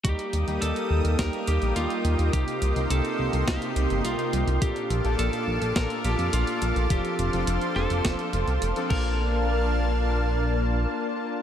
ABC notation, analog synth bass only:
X:1
M:4/4
L:1/16
Q:1/4=105
K:Bb
V:1 name="Analog synth bass" clef=bass
E,, z E,, E,, E,, z E,, E,, E,, z E,, B,,, E,, z E,, E,, | C,, z C,, C,, C,, z C,, C,, C,, z C,, G,,, C,, z C,, C,, | B,,, z B,,, B,,, B,,, z B,,, B,,, B,,, z B,,, F,, B,,, z B,,, B,,, | F,,, z F,,, F,,, F,,, z F,,, F,,, F,,, z F,,, C,, F,,, z B,,,2- |
B,,,12 z4 |]